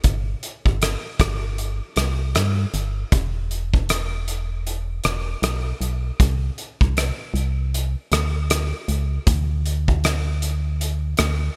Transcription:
0.04 G1, kick, closed hi-hat
0.43 closed hi-hat
0.65 G1, kick
0.82 cross-stick, closed hi-hat
1.19 G1, kick, cross-stick, closed hi-hat
1.58 closed hi-hat
1.96 C2, cross-stick, closed hi-hat
2.35 G2, cross-stick, closed hi-hat
2.74 G1, closed hi-hat
3.12 E1, kick, closed hi-hat
3.51 closed hi-hat
3.74 kick
3.89 cross-stick, closed hi-hat
4.28 closed hi-hat
4.67 closed hi-hat
5.04 E1, cross-stick, closed hi-hat
5.42 B1, cross-stick, closed hi-hat
5.81 B1, closed hi-hat
6.20 C2, kick, closed hi-hat
6.58 closed hi-hat
6.81 C2, kick
6.97 cross-stick, closed hi-hat
7.34 C2, closed hi-hat
7.74 closed hi-hat
8.12 D2, cross-stick, closed hi-hat
8.50 cross-stick, closed hi-hat
8.88 C#2, closed hi-hat
9.27 D2, kick, closed hi-hat
9.66 closed hi-hat
9.88 kick
10.04 cross-stick, closed hi-hat
10.42 closed hi-hat
10.81 closed hi-hat
11.17 D2, cross-stick, closed hi-hat

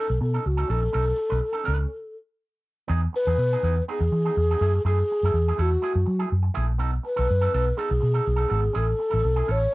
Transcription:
0.00 A4
0.09 B1, muted clean electric guitar stroke
0.21 B2 A4, muted clean electric guitar stroke
0.34 C#4 D#4 A4
0.45 C#2 F#4, muted clean electric guitar stroke
0.57 C#4 D#4 A4
0.68 A#1 C#4 D#4 A4
0.82 muted clean electric guitar stroke
0.93 B1 C#4 D#4 A4
1.06 muted clean electric guitar stroke
1.17 muted clean electric guitar stroke
1.29 B1 C#4 D#4 B4
1.41 muted clean electric guitar stroke
1.53 C#4 D#4 A4
1.64 C#2 C#4 D#4 B4
1.79 muted clean electric guitar stroke
2.88 E2 B3 D#4 G#4
3.03 muted clean electric guitar stroke
3.13 B4, muted clean electric guitar stroke
3.27 E2 B3 D#4 G#4
3.38 B2, muted clean electric guitar stroke
3.53 B3 D#4 G#4
3.63 E2 B3 D#4 G#4
3.77 muted clean electric guitar stroke
3.88 B3 D#4 G#4
4.00 E2, muted clean electric guitar stroke
4.12 E3, muted clean electric guitar stroke
4.25 B3 D#4 G#4
4.37 E2, muted clean electric guitar stroke
4.51 B3 D#4 G#4
4.61 F#2 A3 E4 G#4
4.75 muted clean electric guitar stroke
4.85 F#2 A3 E4 G#4
5.00 muted clean electric guitar stroke
5.11 muted clean electric guitar stroke
5.23 F#2 A3 E4 A4
5.34 E2, muted clean electric guitar stroke
5.48 A3 E4 G#4
5.57 E2 A3 E4 A4
5.62 F#4
5.71 muted clean electric guitar stroke
5.82 A3 E4 G#4
5.94 F#2, muted clean electric guitar stroke
6.06 F#3, muted clean electric guitar stroke
6.19 A3 E4 G#4
6.30 F#2, muted clean electric guitar stroke
6.43 muted clean electric guitar stroke
6.54 A#1 A3 E4 G#4
6.68 muted clean electric guitar stroke
6.78 B1 B3 D#4 A4
6.92 muted clean electric guitar stroke
7.03 B4, muted clean electric guitar stroke
7.16 B1 B3 D#4 A4
7.29 F#2, muted clean electric guitar stroke
7.41 B3 D#4 A4
7.53 B1 B3 D#4 A4
7.67 muted clean electric guitar stroke
7.77 B3 D#4 G#4 A4
7.91 B1, muted clean electric guitar stroke
8.00 B2, muted clean electric guitar stroke
8.14 B3 D#4 A4
8.25 B1, muted clean electric guitar stroke
8.36 B3 D#4 A4
8.49 G#1 B3 D#4 A4
8.62 muted clean electric guitar stroke
8.73 A1 C#4 E4 G#4 A4
8.99 muted clean electric guitar stroke
9.10 A1 C#4 E4 A4
9.22 B1, muted clean electric guitar stroke
9.36 C#4 E4 G#4
9.47 A1 C#4 E4 A4
9.51 C#5
9.60 muted clean electric guitar stroke

